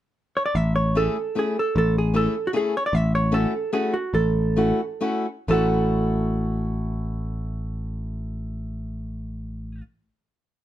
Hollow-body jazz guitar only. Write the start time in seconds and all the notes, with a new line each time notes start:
0.37 C#5
0.46 D5
0.55 E5
0.76 C#5
0.97 A4
1.39 G#4
1.59 A4
1.78 A4
1.98 G#4
2.16 A4
2.47 F#4
2.57 G#4
2.77 C#5
2.86 D5
2.95 E5
3.15 C#5
3.34 A4
3.73 G#4
3.94 F#4
4.14 A4
5.51 A4